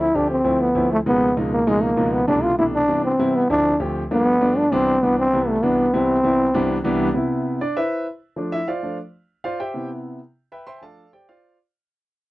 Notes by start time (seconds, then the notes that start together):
0.00 E4
0.15 D2 F3 A3 C4 D4 G4
0.31 C4
0.44 D2 F3 A3 C4 E4
0.61 B3
0.75 D2 F3 A3 C4 E4
0.93 A3
1.06 C#2 B2 F3 G#3 A#3 B3 D#4
1.37 C#2 B2 F3 G#3 A#3 D#4
1.52 A#3
1.67 C#2 B2 F3 G#3 A#3 D#4
1.83 A#3
1.97 C#2 B2 F3 G#3 A#3 D#4
2.13 B3
2.28 C2 B2 E3 G3 A3 D4
2.43 F4
2.59 C2 B2 E3 G3 A3 D4 E4
2.74 D4
2.88 C3 E3 G3 B3 D4
3.05 C4
3.19 C3 E3 G3 B3 E4
3.35 B3
3.50 D2 F3 A3 C4 D4 E4
3.80 D2 F3 A3 C4 G4
4.11 G2 F3 A3 B3 D4
4.41 G2 F3 A3 B3 D4
4.58 D4
4.72 C2 E3 G3 B3 C4 D4
5.03 C2 E3 G3 B3 D4
5.19 C4
5.33 C2 E3 G3 B3 E4
5.48 A3
5.63 C2 E3 G3 B3 D4
5.93 C2 E3 G3 B3 C4 E4
6.24 C2 E3 G3 B3 E4
6.54 C2 E3 G3 B3 D4
6.84 C2 E3 G3 B3 D4
7.14 C3 B3 E4
7.61 D4 D5
7.77 E4 B4 C5 E5
8.36 F3 A3 D4
8.52 E4 E5
8.68 F4 C5 D5 F5
8.83 F3 A3 D4
9.44 F4 C5 D5 F5
9.60 G4 C5 E5 G5
9.74 C3 B3 E4
10.52 B4 E5 G5 B5
10.67 C5 E5 G5 C6
10.78 F3 G#5
10.82 A3 D4 A4 D5 F5 A5
11.13 G4 C5 D5 G5
11.29 F4 C5 D5 F5